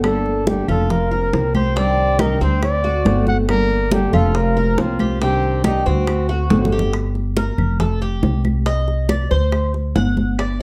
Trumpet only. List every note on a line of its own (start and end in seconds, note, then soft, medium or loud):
0.04 0.49 A4 medium
0.48 0.69 G4 medium
0.69 0.92 A4 medium
0.91 1.55 A#4 medium
1.55 1.79 C5 loud
1.77 2.22 D5 loud
2.20 2.41 A#4 loud
2.42 2.62 C5 medium
2.63 3.24 D5 loud
3.28 3.38 F#5 loud
3.50 3.90 A#4 loud
3.93 4.16 G4 medium
4.14 4.37 A4 medium
4.36 4.81 A#4 loud
4.79 5.22 F4 medium
5.22 5.62 G4 loud
5.65 5.88 G4 medium
5.87 6.73 F#4 medium